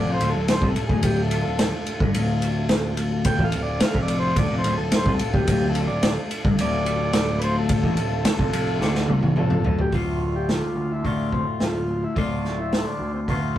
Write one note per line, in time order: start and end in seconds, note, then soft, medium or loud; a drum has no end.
0.00 9.89 A3 medium
0.00 9.89 D4 medium
0.00 9.89 F4 medium
0.00 9.89 A4 medium
0.00 0.11 D5 medium
0.06 0.19 F1 medium
0.06 0.19 F2 loud
0.14 0.30 C5 medium
0.20 0.33 D1 medium
0.20 0.33 D2 medium
0.20 ride medium
0.30 0.47 A4 medium
0.35 0.60 D1 medium
0.35 0.57 D2 medium
0.48 0.67 C5 medium
0.48 snare medium
0.48 ride medium
0.61 0.74 C2 medium
0.61 0.75 C3 medium
0.61 kick loud
0.68 0.85 A4 medium
0.76 muted picked electric bass stroke soft
0.76 muted clean electric guitar stroke medium
0.76 ride medium
0.86 1.02 D1 medium
0.86 1.04 G#4 medium
0.86 kick loud
0.91 1.03 D2 medium
1.03 1.42 D1 medium
1.03 1.44 D2 medium
1.03 1.22 G4 medium
1.03 kick medium
1.03 ride medium
1.23 1.40 A4 medium
1.31 ride medium
1.42 1.71 D1 medium
1.42 1.68 A4 loud
1.47 1.68 D2 medium
1.59 snare loud
1.59 ride medium
1.86 ride medium
2.00 2.14 G1 medium
2.00 2.14 G2 loud
2.00 kick loud
2.14 3.35 D1 medium
2.14 3.39 D2 loud
2.14 ride medium
2.42 ride medium
2.69 snare loud
2.69 ride medium
2.97 ride medium
3.25 3.44 G5 medium
3.25 kick loud
3.25 ride medium
3.39 3.52 A1 medium
3.39 3.53 A2 loud
3.39 kick medium
3.44 3.62 F5 medium
3.52 3.79 D1 medium
3.52 3.76 D2 medium
3.52 ride medium
3.63 3.81 D5 medium
3.80 4.00 F5 medium
3.80 snare loud
3.80 ride medium
3.95 4.34 F1 loud
3.95 4.36 F2 loud
3.95 kick medium
4.02 4.19 D5 medium
4.08 ride medium
4.20 4.37 C5 loud
4.36 4.49 D1 medium
4.36 4.50 D2 loud
4.36 4.56 D5 medium
4.36 kick loud
4.36 ride medium
4.50 4.63 F1 medium
4.50 4.64 F2 medium
4.58 4.75 C5 medium
4.64 4.78 D1 medium
4.64 4.78 D2 medium
4.64 ride medium
4.78 5.04 D1 medium
4.78 5.01 D2 medium
4.78 4.94 A4 medium
4.92 5.12 C5 medium
4.92 snare loud
4.92 ride medium
5.06 5.19 C2 medium
5.06 5.20 C3 loud
5.06 kick loud
5.14 5.31 A4 medium
5.19 muted clean electric guitar stroke medium
5.19 muted picked electric bass stroke soft
5.19 ride medium
5.33 5.47 D1 medium
5.33 5.47 D2 medium
5.33 5.49 G4 medium
5.33 kick loud
5.47 5.87 D1 loud
5.47 5.89 D2 loud
5.47 5.68 G4 medium
5.47 kick loud
5.47 ride loud
5.69 5.86 A4 medium
5.75 ride medium
5.87 6.15 D1 medium
5.87 6.12 D2 medium
5.87 6.13 D5 medium
6.03 snare loud
6.03 ride medium
6.31 ride medium
6.44 6.58 G1 medium
6.44 6.58 G2 medium
6.44 kick loud
6.58 7.80 D1 medium
6.58 7.83 D2 loud
6.58 7.41 D5 loud
6.58 ride medium
6.86 ride medium
7.13 snare loud
7.13 ride medium
7.39 7.42 B4 medium
7.39 ride medium
7.44 7.56 C5 medium
7.58 7.70 A4 medium
7.69 8.78 A4 loud
7.69 kick loud
7.69 ride medium
7.83 7.96 A1 medium
7.83 7.97 A2 loud
7.83 kick medium
7.97 8.24 D1 medium
7.97 8.20 D2 medium
7.97 ride medium
8.25 snare loud
8.25 ride medium
8.39 8.52 F1 medium
8.39 8.52 F2 medium
8.39 kick medium
8.53 8.79 F1 medium
8.53 8.80 F2 loud
8.53 ride medium
8.81 9.07 D2 medium
8.81 9.08 D3 loud
8.81 snare medium
8.95 snare medium
9.08 9.22 C2 medium
9.08 9.22 C3 medium
9.08 high tom medium
9.23 9.36 A1 medium
9.23 9.36 A2 loud
9.23 high tom medium
9.36 9.63 F1 medium
9.36 9.64 F2 loud
9.36 9.81 A4 medium
9.36 mid tom medium
9.50 mid tom medium
9.64 9.91 D1 medium
9.64 9.91 D2 loud
9.64 floor tom medium
9.79 9.94 G4 loud
9.79 floor tom medium
9.92 10.59 D1 medium
9.92 11.03 D2 medium
9.92 11.03 A2 medium
9.92 11.04 D3 medium
9.92 11.05 A3 medium
9.92 10.37 F4 medium
9.92 11.06 F4 medium
9.92 kick medium
9.92 open hi-hat soft
10.36 10.50 G4 medium
10.49 10.92 F4 medium
10.49 snare loud
10.49 open hi-hat soft
10.76 11.42 D2 medium
10.92 11.06 E4 medium
11.03 12.15 D2 medium
11.03 12.14 A2 medium
11.03 12.17 D3 medium
11.03 12.17 A3 medium
11.03 11.31 D4 medium
11.03 12.18 F4 medium
11.03 kick medium
11.03 open hi-hat soft
11.32 11.46 C4 medium
11.32 kick medium
11.60 12.04 D1 medium
11.60 12.05 F4 medium
11.60 snare medium
11.60 open hi-hat soft
12.04 12.17 E4 medium
12.16 12.82 D1 medium
12.16 13.27 D2 medium
12.16 13.26 A2 medium
12.16 13.29 D3 medium
12.16 13.29 A3 medium
12.16 12.60 D4 medium
12.16 13.30 F4 medium
12.16 kick loud
12.16 open hi-hat soft
12.45 snare soft
12.58 12.73 E4 medium
12.72 12.79 D4 medium
12.72 snare loud
12.72 open hi-hat soft
12.78 12.85 E4 medium
12.86 13.12 D4 medium
13.00 13.58 D2 medium
13.14 13.20 C4 medium
13.28 13.58 D2 medium
13.28 13.58 A2 medium
13.28 13.58 D3 medium
13.28 13.58 A3 medium
13.28 13.41 B3 medium
13.28 13.58 F4 medium
13.28 kick medium
13.28 open hi-hat soft